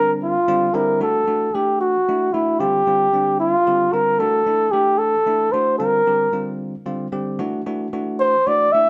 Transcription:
Already playing: D3 G3 C4 D4 A#4
0.23 F4
0.48 D3 G3 C4 F4
0.74 D3 G3 C4 E4 A#4
1.00 E3 A3 D4 F#4 A4
1.28 E3 A3 D4 F#4
1.55 E3 A3 D4 G4 A4
1.81 F#4
2.08 E3 A3 D4 E4
2.33 E3 A3 D4 E4 F#4
2.60 D3 G3 C4 F4 G4
2.87 D3 G3 C4 F4
3.13 D3 G3 C4 D4
3.40 F4
3.67 D3 G3 C4 G4
3.93 D3 G3 C4 F4 A#4
4.19 E3 A3 D4 F#4 A4
4.46 E3 A3 D4 E4
4.72 E3 A3 D4 G4 A4
4.98 A4
5.26 E3 A3 D4 E4
5.52 E3 A3 D4 F#4 C5
5.79 D3 G3 C4 F4 A#4
6.07 D3 G3 C4 G4
6.33 D3 G3 C4 F4
6.86 D3 G3 C4 F4
7.12 D3 G3 C4 G4
7.39 E3 A3 D4 F#4
7.66 E3 A3 D4 F#4
7.93 E3 A3 D4 F#4
8.20 C5
8.47 E3 A3 D4 F#4 D5
8.72 E3 A3 D4 E4 E5

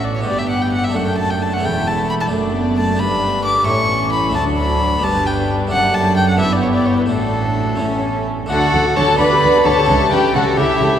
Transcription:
Already playing: A1 A2 B3 C#4 D4 F#4
0.04 D5
0.16 C#5
0.21 G2 B3 D4 G4
0.25 G1 G2 B3 G4 D5
0.39 E5
0.49 F#5
0.61 G5
0.73 F#5
0.84 E5
0.89 F#1 A3 D4 A4
0.94 F#2 A3 D4 F#5
1.07 G5
1.18 A5
1.30 G5
1.42 A5
1.53 A3 F#5
1.58 E2 C#4 A4
1.63 E1 E2 E4 G5
1.87 A5
2.10 B5
2.21 A5
2.26 A3 D4 A4
2.30 F#1 F#2 A3 D4 D5
2.54 B3
2.77 A3 A5
2.95 G1 D4 G4 B5
3.00 G2 G3 B4
3.45 D6
3.63 A1 A2 A3 E4 G4 A4 C#6
3.68 A2 E3 C#4
4.12 B5
4.30 A3 D4 F#4
4.34 D2 F#3 D4 A4 A5
4.58 B5
4.99 B3 D4 G4 B4
5.03 G1 G2 G3 D4 A5
5.26 G5
5.67 A3 D4 A4
5.72 F#1 F#2 D4 F#5
5.94 A5
6.17 G5
6.29 F#5
6.37 G1 G2 B3 E4 G4 E5
6.42 G2 E4
6.53 D5
6.62 C#5
6.75 D5
6.86 C#5
6.97 B4
7.06 A1 A3 D4 E4 F#4 A4
7.10 A2 D4
7.76 A2 A3 C#4 E4
7.80 A1 A2 C#4 E4
8.46 D2 D3 A3 D4 F#4 F#5
8.51 A4
8.63 F#4
8.73 D2 D3 A4
8.86 F#4
8.96 D2 D3 A4 C#5 A5
9.08 F#4
9.14 B3 D4 G4
9.19 D2 D3 B4 D5 B5
9.32 G4
9.42 D2 D3 B4
9.56 G4
9.65 D2 D3 A4 B4 C#5 A5
9.79 G4
9.83 A3 E4 G4
9.88 C#2 C#3 A4
10.02 G4
10.11 C#2 C#3 G4 A4 B4 G5
10.25 G4
10.34 C#2 C#3 F#4 A4 F#5
10.47 G4
10.57 C#2 C#3 E4 G4 A4 E5
10.70 G4
10.80 C#2 C#3 A4
10.93 G4

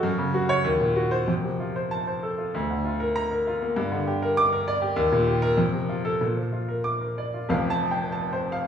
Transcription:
0.03 F#2
0.18 C#3
0.34 F#4
0.49 C#5
0.64 D#2
0.80 A#2
0.96 F#4
1.11 C5
1.28 F2
1.44 C3
1.60 F4
1.76 C5
1.91 A5
2.07 C5
2.23 A4
2.38 F4
2.54 D2
2.70 D3
2.85 F4
3.00 A#4
3.16 A#5
3.31 A#4
3.47 F4
3.62 A#3
3.76 G2
3.92 D3
4.07 G4
4.22 A#4
4.37 D6
4.52 A#4
4.68 D5
4.82 G4
4.96 D#2
5.12 A#2
5.27 G4
5.42 A#4
5.57 F2
5.73 C3
5.89 F4
6.05 A4
6.21 A#2
6.37 F3
6.53 F4
6.68 A#4
6.84 D6
7.01 A#4
7.18 D5
7.34 F4
7.49 F1 F2 F5
7.70 A5
7.91 G5
8.12 A5
8.33 C5
8.52 F5

